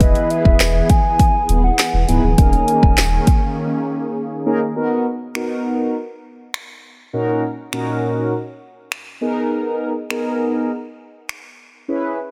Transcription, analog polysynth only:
0.00 0.66 B3 loud
0.00 0.66 E4 medium
0.00 0.66 G#4 medium
0.00 0.66 B4 loud
2.08 2.22 B3 medium
2.08 2.22 D#4 medium
2.08 2.23 E4 medium
2.08 2.23 G#4 medium
2.08 2.23 B4 medium
2.38 2.98 A#3 medium
2.38 2.98 C#4 medium
2.38 2.99 D#4 medium
2.38 2.99 G#4 medium
2.38 2.99 A#4 medium
4.46 4.60 A#3 loud
4.46 4.60 C#4 medium
4.46 4.60 D#4 medium
4.46 4.60 G#4 medium
4.46 4.60 A#4 loud
4.76 5.06 B3 medium
4.76 5.06 D#4 medium
4.76 5.06 F#4 medium
4.76 5.06 A#4 medium
5.35 5.96 B3 medium
5.35 5.96 D#4 medium
5.35 5.96 F#4 medium
5.35 5.96 A#4 loud
7.13 7.44 A#2 medium
7.13 7.44 C#4 medium
7.13 7.44 D#4 medium
7.13 7.44 F#4 medium
7.13 7.44 A#4 loud
7.73 8.33 A#2 medium
7.73 8.33 C#4 medium
7.73 8.33 D#4 medium
7.73 8.33 F#4 medium
7.73 8.33 A#4 loud
9.21 9.93 B3 medium
9.21 9.93 D#4 medium
9.21 9.93 G#4 medium
9.21 9.93 A#4 loud
10.10 10.71 B3 medium
10.10 10.71 D#4 medium
10.10 10.71 G#4 medium
10.10 10.71 A#4 loud
11.88 12.19 C#4 medium
11.88 12.19 E4 medium
11.88 12.19 G#4 medium
11.88 12.19 B4 medium

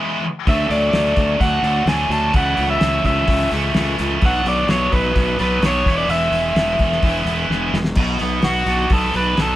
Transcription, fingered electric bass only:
0.47 0.68 D2 medium
0.70 0.91 D2 medium
0.93 1.14 D2 medium
1.17 1.38 D2 medium
1.40 1.61 D2 medium
1.63 1.84 D2 medium
1.86 2.07 D2 medium
2.09 2.30 D2 medium
2.34 2.55 C#2 medium
2.58 2.78 C#2 medium
2.81 3.02 C#2 medium
3.04 3.25 C#2 medium
3.27 3.48 C#2 medium
3.52 3.72 C#2 medium
3.75 3.95 C#2 medium
3.99 4.19 C#2 medium
4.22 4.42 B1 medium
4.45 4.66 B1 medium
4.69 4.89 B1 medium
4.92 5.13 B1 medium
5.16 5.36 B1 medium
5.40 5.60 B1 medium
5.62 5.83 B1 medium
5.86 6.06 E1 medium
6.09 6.29 E1 medium
6.32 6.53 E1 medium
6.56 6.76 E1 medium
6.79 7.00 E1 medium
7.03 7.23 E1 medium
7.26 7.47 E1 medium
7.50 7.71 E1 medium
7.73 7.94 E1 medium
7.96 8.18 B1 medium
8.21 8.42 B1 medium
8.44 8.66 B1 medium
8.66 8.88 B1 medium
8.90 9.12 B1 medium
9.14 9.36 B1 medium
9.38 9.56 B1 medium

